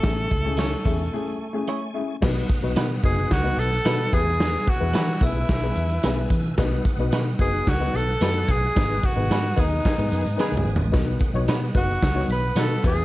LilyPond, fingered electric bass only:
\new Staff \with { instrumentName = "Fingered electric bass" } { \clef bass \time 4/4 \key b \mixolydian \tempo 4 = 110 a,,8 cis,4 e,8 r2 | b,,8 r16 b,,16 b,8 fis,,8 cis,8 b,,8 b,8 e,8~ | e,8 r16 e,16 e8 b,,8 b,,8 e,8 b,,8 e8 | b,,8 r16 b,,16 b,8 fis,,8 cis,8 b,,8 fis,8 b,,8 |
gis,,8 r16 gis,,16 gis,8 dis,8 r16 gis,16 fis,16 gis,16 r16 cis,16 gis,,16 a,,16 | b,,8 r16 b,,16 b,8 fis,,8 cis,8 b,,8 b,8 e,8 | }